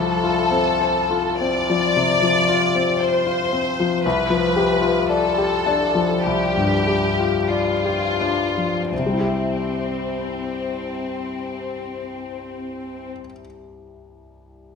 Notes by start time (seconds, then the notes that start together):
Already playing: C2 F3 A4
0.23 F4
0.51 C4
0.81 C5
1.10 F4
1.40 C4 D5
1.70 F3
1.97 C3
2.22 F3
2.49 F4
2.75 C4
3.00 C5
3.27 F4
3.52 C4
3.80 F3
4.05 C2 B4
4.30 F3
4.56 G4
4.82 F4
5.09 A4 D5
5.38 G4
5.66 D4
5.95 F3
6.24 C2 G4
6.57 G2
6.87 G4
7.20 F4
7.49 F4 D5
7.85 G4
8.21 D4
8.57 F3
8.92 C2 C4
8.99 C3
9.06 G3
9.13 E4
9.20 G4
9.27 E5